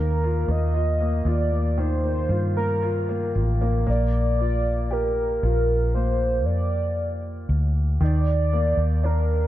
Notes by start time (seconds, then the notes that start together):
Already playing: D#2 D#3 A#3 A#4
0.24 F4
0.48 D#2 A#3 D#5
0.74 F4
1.01 A#3
1.25 D#2 F4 D5
1.52 A#3
1.78 D#3 C5
2.04 A#3
2.29 G2 F4
2.57 A#3 A#4
2.83 F4
3.09 A#3
3.35 A1 F4
3.61 A#3
3.87 A#1 A#3 D5
4.39 F4
4.91 G4 A#4
5.43 A#1 F4
5.94 A#3 C5
6.46 F2 D5
7.49 D2
8.00 D#2 D#3 D5
8.53 A#3
8.77 D#2
9.04 D4 A#4